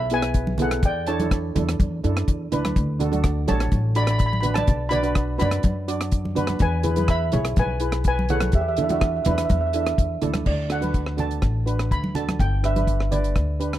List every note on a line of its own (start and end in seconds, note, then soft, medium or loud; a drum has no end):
0.00 0.79 B1 medium
0.00 0.11 E5 medium
0.00 0.13 B5 loud
0.10 0.40 B3 medium
0.10 0.40 E4 medium
0.10 0.40 G#4 medium
0.10 0.57 B4 medium
0.10 0.62 G#5 loud
0.10 closed hi-hat medium
0.22 cross-stick medium
0.22 closed hi-hat medium
0.34 kick medium
0.34 closed hi-hat medium
0.47 high conga medium
0.58 0.83 B3 medium
0.58 0.83 E4 medium
0.58 0.83 G#4 medium
0.58 0.83 A4 medium
0.58 closed hi-hat medium
0.58 low conga medium
0.62 0.85 F#5 medium
0.71 cross-stick medium
0.71 closed hi-hat medium
0.83 1.51 E2 medium
0.83 1.07 D5 medium
0.83 1.09 G5 medium
0.83 kick loud
0.83 closed hi-hat medium
1.07 1.15 D4 medium
1.07 1.15 E4 medium
1.07 1.15 A4 medium
1.07 2.48 C#5 medium
1.07 2.48 A5 medium
1.07 closed hi-hat medium
1.20 1.42 D4 medium
1.20 1.42 E4 medium
1.20 1.42 A4 medium
1.20 closed hi-hat medium
1.20 high conga medium
1.31 kick medium
1.31 cross-stick medium
1.31 closed hi-hat medium
1.55 1.78 E2 loud
1.55 1.85 D4 medium
1.55 1.84 E4 medium
1.55 1.84 A4 medium
1.55 closed hi-hat medium
1.55 high conga medium
1.55 low conga medium
1.69 cross-stick medium
1.69 closed hi-hat medium
1.80 2.02 E2 medium
1.80 kick loud
1.80 closed hi-hat medium
1.80 high conga medium
2.04 2.26 F#2 medium
2.04 2.33 D4 medium
2.04 2.33 E4 medium
2.04 2.33 A4 medium
2.04 closed hi-hat medium
2.17 cross-stick medium
2.17 closed hi-hat medium
2.28 2.50 E2 medium
2.28 kick medium
2.28 closed hi-hat medium
2.52 2.74 D2 medium
2.52 2.76 D4 medium
2.52 2.76 E4 medium
2.52 2.76 B4 medium
2.52 closed hi-hat medium
2.52 low conga medium
2.65 cross-stick medium
2.65 closed hi-hat medium
2.65 high conga medium
2.76 3.45 D2 medium
2.76 kick loud
2.76 closed hi-hat medium
2.99 3.07 D4 medium
2.99 3.07 F#4 medium
2.99 3.08 A4 medium
2.99 closed hi-hat medium
2.99 low conga medium
3.12 3.34 D4 medium
3.12 3.34 F#4 medium
3.12 3.34 A4 medium
3.12 closed hi-hat medium
3.12 high conga medium
3.24 kick medium
3.24 cross-stick medium
3.24 closed hi-hat medium
3.47 3.71 A1 loud
3.47 3.77 D4 medium
3.47 3.77 F#4 medium
3.47 3.77 A4 medium
3.47 3.93 C#5 medium
3.47 3.98 A5 medium
3.47 closed hi-hat medium
3.47 high conga medium
3.47 low conga medium
3.60 cross-stick medium
3.60 closed hi-hat medium
3.72 4.64 A1 medium
3.72 kick loud
3.72 closed hi-hat medium
3.72 high conga medium
3.95 4.25 D4 medium
3.95 4.25 F#4 medium
3.95 4.25 A4 medium
3.95 4.04 D5 medium
3.95 4.02 B5 loud
3.95 closed hi-hat medium
4.04 4.10 B5 medium
4.04 cross-stick medium
4.04 closed hi-hat medium
4.11 4.17 B5 medium
4.19 4.25 B5 medium
4.19 kick medium
4.19 closed hi-hat medium
4.26 4.31 B5 medium
4.33 4.39 B5 medium
4.33 high conga medium
4.41 4.68 D4 medium
4.41 4.67 F#4 medium
4.41 4.68 B4 medium
4.41 4.48 B5 medium
4.41 closed hi-hat medium
4.45 low conga medium
4.54 4.91 D5 medium
4.54 4.92 A5 loud
4.54 cross-stick medium
4.54 closed hi-hat medium
4.54 high conga medium
4.67 5.36 B1 medium
4.67 kick loud
4.67 closed hi-hat medium
4.89 4.99 D4 medium
4.89 4.99 F#4 medium
4.89 4.99 B4 medium
4.89 5.37 D5 medium
4.89 5.38 B5 loud
4.89 closed hi-hat medium
4.89 low conga medium
5.03 5.25 D4 medium
5.03 5.26 F#4 medium
5.03 5.26 B4 medium
5.03 closed hi-hat medium
5.15 kick medium
5.15 cross-stick medium
5.15 closed hi-hat medium
5.38 5.63 F#2 loud
5.38 5.68 D4 medium
5.38 5.69 F#4 medium
5.38 5.68 B4 medium
5.38 6.33 D5 medium
5.38 6.32 B5 medium
5.38 closed hi-hat medium
5.38 high conga medium
5.38 low conga medium
5.51 cross-stick medium
5.51 closed hi-hat medium
5.63 6.56 F#2 medium
5.63 kick loud
5.63 closed hi-hat medium
5.63 high conga medium
5.88 6.17 D4 medium
5.88 6.17 F#4 medium
5.88 6.17 D5 medium
5.88 closed hi-hat medium
6.01 cross-stick medium
6.01 closed hi-hat medium
6.11 kick medium
6.11 closed hi-hat medium
6.25 high conga medium
6.35 6.60 D4 medium
6.35 6.60 F#4 medium
6.35 6.61 B4 loud
6.35 closed hi-hat medium
6.35 low conga medium
6.47 cross-stick medium
6.47 closed hi-hat medium
6.47 high conga medium
6.59 7.29 E2 loud
6.59 7.06 B4 medium
6.59 7.11 G#5 loud
6.59 kick loud
6.59 closed hi-hat medium
6.83 6.92 E4 medium
6.83 6.92 G#4 medium
6.83 6.92 B4 medium
6.83 closed hi-hat medium
6.83 low conga medium
6.96 7.18 E4 medium
6.96 7.18 G#4 medium
6.96 7.18 B4 medium
6.96 closed hi-hat medium
6.96 high conga medium
7.08 7.54 E5 medium
7.08 7.59 B5 loud
7.08 kick medium
7.08 cross-stick medium
7.08 closed hi-hat medium
7.32 7.55 B1 loud
7.32 7.62 E4 medium
7.32 7.62 G#4 medium
7.32 7.62 C#5 medium
7.32 closed hi-hat medium
7.32 high conga medium
7.32 low conga medium
7.45 cross-stick medium
7.45 closed hi-hat medium
7.56 8.49 B1 loud
7.56 8.03 B4 medium
7.56 8.07 G#5 medium
7.56 kick loud
7.56 closed hi-hat medium
7.56 high conga medium
7.80 8.10 E4 medium
7.80 8.10 G#4 medium
7.80 8.10 B4 medium
7.80 closed hi-hat medium
7.92 cross-stick medium
7.92 closed hi-hat medium
8.04 8.18 B4 medium
8.04 8.18 G#5 loud
8.04 kick medium
8.04 closed hi-hat medium
8.19 high conga medium
8.29 8.53 E4 medium
8.29 8.54 G#4 medium
8.29 8.52 A4 medium
8.29 8.54 C#5 medium
8.29 8.54 F#5 medium
8.29 closed hi-hat medium
8.29 low conga medium
8.40 cross-stick medium
8.40 closed hi-hat medium
8.40 high conga medium
8.52 9.22 E2 medium
8.52 8.61 G4 medium
8.52 8.60 E5 medium
8.52 kick loud
8.52 closed hi-hat medium
8.61 8.67 E5 medium
8.68 8.75 E5 medium
8.76 8.85 D4 medium
8.76 8.85 E4 medium
8.76 8.85 A4 medium
8.76 8.83 E5 medium
8.76 closed hi-hat medium
8.76 low conga medium
8.84 8.90 E5 medium
8.89 9.11 D4 medium
8.89 9.11 E4 medium
8.89 9.11 F#4 medium
8.89 8.98 E5 soft
8.89 closed hi-hat medium
8.89 high conga medium
9.00 9.06 E5 medium
9.00 kick medium
9.00 cross-stick medium
9.00 closed hi-hat medium
9.08 9.14 E5 soft
9.16 9.22 E5 soft
9.24 9.48 E2 loud
9.24 9.55 D4 medium
9.24 9.55 E4 medium
9.24 9.55 B4 medium
9.24 9.29 E5 soft
9.24 closed hi-hat medium
9.24 high conga medium
9.24 low conga medium
9.31 9.37 E5 soft
9.38 9.44 E5 soft
9.38 cross-stick medium
9.38 closed hi-hat medium
9.45 9.51 E5 medium
9.49 9.95 E2 medium
9.49 9.59 E5 soft
9.49 kick loud
9.49 closed hi-hat medium
9.49 high conga medium
9.61 9.66 E5 medium
9.67 9.73 E5 medium
9.73 10.03 D4 medium
9.73 10.03 E4 medium
9.73 10.03 A4 medium
9.73 9.81 E5 medium
9.73 closed hi-hat medium
9.83 9.89 E5 medium
9.83 cross-stick medium
9.83 closed hi-hat medium
9.98 10.20 E2 medium
9.98 kick medium
9.98 closed hi-hat medium
10.22 10.44 D2 medium
10.22 10.46 D4 medium
10.22 10.46 E4 medium
10.22 10.46 A4 medium
10.22 closed hi-hat medium
10.22 low conga medium
10.34 cross-stick medium
10.34 closed hi-hat medium
10.34 high conga medium
10.46 11.39 D2 medium
10.46 10.71 D5 medium
10.46 kick medium
10.46 crash medium
10.70 10.77 D4 medium
10.70 10.77 F#4 medium
10.70 10.77 A4 medium
10.70 11.16 F#5 medium
10.70 cross-stick medium
10.70 closed hi-hat medium
10.81 11.03 D4 medium
10.81 11.04 F#4 medium
10.81 11.04 B4 medium
10.81 closed hi-hat medium
10.81 high conga medium
10.94 kick medium
10.94 closed hi-hat medium
11.06 cross-stick medium
11.17 11.47 D4 medium
11.17 11.47 F#4 medium
11.17 11.47 A4 medium
11.17 11.94 A5 medium
11.17 closed hi-hat medium
11.17 low conga medium
11.31 closed hi-hat medium
11.42 11.87 A1 medium
11.42 kick medium
11.42 cross-stick medium
11.42 closed hi-hat medium
11.66 11.96 D4 medium
11.66 11.95 F#4 medium
11.66 11.96 B4 medium
11.66 closed hi-hat medium
11.79 cross-stick medium
11.79 closed hi-hat medium
11.91 12.36 D2 medium
11.91 12.16 B5 medium
11.91 kick medium
11.91 closed hi-hat medium
12.04 high conga medium
12.15 12.39 D4 medium
12.15 12.39 F#4 medium
12.15 12.39 A4 medium
12.15 12.26 A5 medium
12.15 closed hi-hat medium
12.15 low conga medium
12.29 cross-stick medium
12.29 closed hi-hat medium
12.29 high conga medium
12.39 13.32 G1 medium
12.39 12.65 G5 medium
12.39 kick medium
12.39 closed hi-hat medium
12.63 12.71 D4 medium
12.63 12.71 G4 medium
12.63 12.71 B4 medium
12.63 13.09 E5 medium
12.63 cross-stick medium
12.63 closed hi-hat medium
12.76 12.98 D4 medium
12.76 12.98 G4 medium
12.76 12.98 B4 medium
12.76 closed hi-hat medium
12.76 high conga medium
12.87 kick medium
12.87 closed hi-hat medium
13.00 cross-stick medium
13.11 13.41 D4 medium
13.11 13.41 G4 medium
13.11 13.41 B4 medium
13.11 13.57 D5 medium
13.11 closed hi-hat medium
13.11 low conga medium
13.24 closed hi-hat medium
13.36 13.79 D2 medium
13.36 kick medium
13.36 cross-stick medium
13.36 closed hi-hat medium
13.60 13.79 D4 medium
13.60 13.79 G4 medium
13.60 13.79 B4 medium
13.60 closed hi-hat medium
13.73 cross-stick medium
13.73 closed hi-hat medium